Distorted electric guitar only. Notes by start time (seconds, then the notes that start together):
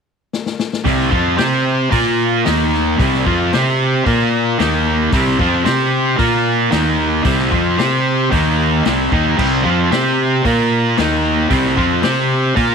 0.85 C3 G3 C4
1.11 F3 C4 F4
1.37 C4 G4 C5
1.91 A#3 F4 A#4
2.44 D#3 A#3 D#4
2.98 C3 G3 C4
3.25 F3 C4 F4
3.53 C4 G4 C5
4.05 A#3 F4 A#4
4.58 D#3 A#3 D#4
5.13 C3 G3 C4
5.39 F3 C4 F4
5.65 C4 G4 C5
6.18 A#3 F4 A#4
6.71 D#3 A#3 D#4
7.24 C3 G3 C4
7.51 F3 C4 F4
7.77 C4 G4 C5
8.30 D#3 A#3 D#4
8.85 C3 G3 C4
9.13 D#3 A#3 D#4
9.38 C3 G3 C4
9.65 F3 C4 F4
9.91 C4 G4 C5
10.45 A#3 F4 A#4
10.97 D#3 A#3 D#4
11.50 C3 G3 C4
11.77 F3 C4 F4
12.02 C4 G4 C5
12.56 A#3 F4 A#4